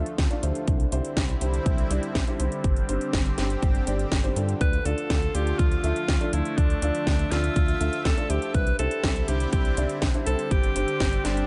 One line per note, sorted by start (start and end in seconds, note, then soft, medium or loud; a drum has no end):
0.00 8.50 D3 medium
0.00 0.64 F3 medium
0.00 0.64 A3 medium
0.00 0.11 D4 medium
0.00 0.11 F4 medium
0.00 0.64 F4 medium
0.00 0.11 A4 medium
0.00 0.11 E5 loud
0.06 closed hi-hat soft
0.18 0.28 D2 medium
0.18 kick loud
0.18 snare loud
0.18 closed hi-hat medium
0.31 0.40 D4 medium
0.31 0.40 F4 medium
0.31 0.40 A4 medium
0.31 0.40 D5 loud
0.31 closed hi-hat soft
0.43 0.52 D2 medium
0.43 0.89 D4 medium
0.43 0.89 E4 medium
0.43 0.89 G4 medium
0.43 0.89 C5 medium
0.43 closed hi-hat medium
0.55 closed hi-hat soft
0.68 0.86 C2 loud
0.68 4.57 G3 medium
0.68 2.62 C4 medium
0.68 2.62 E4 medium
0.68 kick loud
0.68 closed hi-hat medium
0.80 closed hi-hat soft
0.92 1.01 C2 medium
0.92 1.19 D4 loud
0.92 1.19 E4 medium
0.92 1.19 G4 medium
0.92 1.19 C5 loud
0.92 closed hi-hat medium
1.05 closed hi-hat soft
1.17 1.35 C2 medium
1.17 kick loud
1.17 snare loud
1.17 closed hi-hat medium
1.29 closed hi-hat soft
1.41 1.60 C2 medium
1.41 1.88 D4 medium
1.41 1.88 E4 medium
1.41 1.87 G4 medium
1.41 1.88 C5 medium
1.41 closed hi-hat medium
1.54 closed hi-hat soft
1.66 1.84 C2 medium
1.66 kick loud
1.66 closed hi-hat medium
1.78 closed hi-hat soft
1.90 2.00 C2 loud
1.90 2.07 D4 medium
1.90 2.07 E4 medium
1.90 2.07 G4 medium
1.90 2.07 D5 loud
1.90 closed hi-hat medium
2.03 closed hi-hat soft
2.15 2.24 C2 medium
2.15 kick loud
2.15 snare loud
2.15 closed hi-hat medium
2.27 2.37 D4 medium
2.27 2.37 E4 medium
2.27 2.37 G4 medium
2.27 2.37 C5 loud
2.27 closed hi-hat soft
2.40 2.49 C2 medium
2.40 2.86 C4 medium
2.40 2.86 D4 medium
2.40 2.86 G4 medium
2.40 2.86 C5 medium
2.40 closed hi-hat medium
2.52 closed hi-hat soft
2.64 2.83 G1 loud
2.64 4.59 C4 medium
2.64 4.59 G4 medium
2.64 kick loud
2.64 closed hi-hat medium
2.77 closed hi-hat soft
2.89 2.98 G1 medium
2.89 3.16 C4 medium
2.89 3.16 D4 medium
2.89 3.16 G4 medium
2.89 3.16 C5 loud
2.89 closed hi-hat medium
3.01 closed hi-hat soft
3.13 3.32 G1 loud
3.13 kick loud
3.13 snare loud
3.13 closed hi-hat medium
3.26 closed hi-hat soft
3.38 3.57 G1 medium
3.38 3.84 C4 medium
3.38 3.84 D4 medium
3.38 3.84 G4 medium
3.38 3.84 C5 medium
3.38 snare medium
3.38 closed hi-hat medium
3.50 closed hi-hat soft
3.63 3.81 G1 medium
3.63 kick loud
3.63 closed hi-hat medium
3.75 closed hi-hat soft
3.87 4.06 G1 medium
3.87 4.04 C4 medium
3.87 4.04 D4 medium
3.87 4.04 G4 medium
3.87 4.04 D5 loud
3.87 closed hi-hat medium
3.99 closed hi-hat soft
4.12 4.30 G1 medium
4.12 kick loud
4.12 snare loud
4.12 closed hi-hat medium
4.24 4.33 C4 medium
4.24 4.33 D4 medium
4.24 4.33 G4 medium
4.24 4.33 C5 medium
4.24 closed hi-hat soft
4.36 4.55 G2 medium
4.36 4.83 D4 medium
4.36 4.83 F4 medium
4.36 4.83 A4 medium
4.36 4.83 D5 medium
4.36 closed hi-hat medium
4.49 closed hi-hat soft
4.61 4.79 D2 loud
4.61 8.50 F3 medium
4.61 8.50 A3 medium
4.61 6.56 F4 medium
4.61 4.87 B4 loud
4.61 kick loud
4.61 closed hi-hat medium
4.73 closed hi-hat soft
4.85 4.95 D2 medium
4.85 5.12 D4 medium
4.85 5.12 F4 medium
4.85 5.36 A4 loud
4.85 5.12 A4 medium
4.85 5.12 D5 loud
4.85 closed hi-hat medium
4.98 closed hi-hat soft
5.10 5.29 D2 loud
5.10 kick loud
5.10 snare loud
5.10 closed hi-hat medium
5.22 closed hi-hat soft
5.35 5.53 D2 medium
5.35 5.81 D4 medium
5.35 5.81 F4 medium
5.35 5.61 G4 loud
5.35 5.81 A4 medium
5.35 5.81 D5 medium
5.35 closed hi-hat medium
5.47 closed hi-hat soft
5.59 5.78 D2 medium
5.59 6.34 F4 loud
5.59 kick loud
5.59 closed hi-hat medium
5.72 closed hi-hat soft
5.84 5.93 D2 loud
5.84 6.01 D4 medium
5.84 6.01 F4 medium
5.84 6.01 A4 medium
5.84 6.01 E5 loud
5.84 closed hi-hat medium
5.96 closed hi-hat soft
6.08 6.18 D2 medium
6.08 kick loud
6.08 snare loud
6.08 closed hi-hat medium
6.21 6.30 D4 medium
6.21 6.30 F4 medium
6.21 6.30 A4 medium
6.21 6.30 D5 loud
6.21 closed hi-hat soft
6.33 6.42 D2 medium
6.33 6.79 D4 medium
6.33 6.59 E4 medium
6.33 6.79 F4 medium
6.33 6.79 A4 medium
6.33 6.79 D5 medium
6.33 closed hi-hat medium
6.45 closed hi-hat soft
6.57 6.76 D2 loud
6.57 7.33 D4 loud
6.57 8.52 E5 medium
6.57 kick loud
6.57 closed hi-hat medium
6.70 closed hi-hat soft
6.82 6.92 D2 medium
6.82 7.09 D4 loud
6.82 7.09 F4 medium
6.82 7.09 A4 medium
6.82 7.09 D5 loud
6.82 closed hi-hat medium
6.95 closed hi-hat soft
7.07 7.25 D2 loud
7.07 kick loud
7.07 snare loud
7.07 closed hi-hat medium
7.19 closed hi-hat soft
7.31 7.50 D2 medium
7.31 7.78 D4 medium
7.31 8.07 F4 loud
7.31 7.78 F4 medium
7.31 7.78 A4 medium
7.31 7.78 D5 medium
7.31 snare medium
7.31 closed hi-hat medium
7.44 closed hi-hat soft
7.56 7.75 D2 medium
7.56 kick loud
7.56 closed hi-hat medium
7.68 closed hi-hat soft
7.81 7.90 D2 loud
7.81 7.98 D4 medium
7.81 7.98 F4 medium
7.81 7.98 A4 medium
7.81 7.98 E5 loud
7.81 closed hi-hat medium
7.93 closed hi-hat soft
8.05 8.15 D2 medium
8.05 8.31 A4 loud
8.05 kick loud
8.05 snare loud
8.05 closed hi-hat medium
8.18 8.27 D4 medium
8.18 8.27 F4 medium
8.18 8.27 A4 medium
8.18 8.27 D5 loud
8.18 closed hi-hat soft
8.30 8.39 D2 medium
8.30 8.76 D4 medium
8.30 8.76 E4 medium
8.30 8.56 G4 medium
8.30 8.76 G4 medium
8.30 8.76 C5 medium
8.30 closed hi-hat medium
8.42 closed hi-hat soft
8.54 8.73 C2 loud
8.54 11.47 D3 medium
8.54 10.49 G3 medium
8.54 10.49 C4 medium
8.54 10.49 E4 medium
8.54 8.78 B4 loud
8.54 kick loud
8.54 closed hi-hat medium
8.67 closed hi-hat soft
8.79 8.88 C2 medium
8.79 9.06 D4 medium
8.79 9.06 E4 medium
8.79 9.06 G4 medium
8.79 9.30 A4 loud
8.79 9.06 C5 loud
8.79 closed hi-hat medium
8.91 closed hi-hat soft
9.04 9.22 C2 loud
9.04 kick loud
9.04 snare loud
9.04 closed hi-hat medium
9.16 closed hi-hat soft
9.28 9.47 C2 medium
9.28 9.74 D4 medium
9.28 9.74 E4 medium
9.28 9.52 G4 medium
9.28 9.74 G4 medium
9.28 9.74 C5 medium
9.28 closed hi-hat medium
9.40 closed hi-hat soft
9.53 9.71 C2 medium
9.53 9.96 G4 medium
9.53 kick loud
9.53 closed hi-hat medium
9.65 closed hi-hat soft
9.77 9.87 C2 loud
9.77 9.94 D4 medium
9.77 9.94 E4 medium
9.77 9.94 G4 medium
9.77 9.94 D5 loud
9.77 closed hi-hat medium
9.89 closed hi-hat soft
10.02 10.11 C2 medium
10.02 kick loud
10.02 snare loud
10.02 closed hi-hat medium
10.14 10.24 D4 medium
10.14 10.24 E4 medium
10.14 10.24 G4 medium
10.14 10.24 C5 loud
10.14 closed hi-hat soft
10.26 10.36 C2 medium
10.26 10.73 C4 medium
10.26 10.73 D4 medium
10.26 10.73 G4 medium
10.26 10.53 A4 loud
10.26 10.73 C5 medium
10.26 closed hi-hat loud
10.39 closed hi-hat soft
10.51 10.70 G1 loud
10.51 11.47 G3 medium
10.51 11.47 C4 medium
10.51 11.26 G4 loud
10.51 11.47 G4 medium
10.51 kick loud
10.51 closed hi-hat medium
10.63 closed hi-hat soft
10.76 10.85 G1 medium
10.76 11.03 C4 loud
10.76 11.03 D4 medium
10.76 11.03 G4 medium
10.76 11.03 C5 loud
10.76 closed hi-hat medium
10.88 closed hi-hat soft
11.00 11.19 G1 loud
11.00 kick loud
11.00 snare loud
11.00 closed hi-hat medium
11.13 closed hi-hat soft
11.25 11.43 G1 medium
11.25 11.47 C4 medium
11.25 11.47 D4 loud
11.25 11.47 D4 medium
11.25 11.47 G4 medium
11.25 11.47 C5 medium
11.25 snare medium
11.25 closed hi-hat medium
11.37 closed hi-hat soft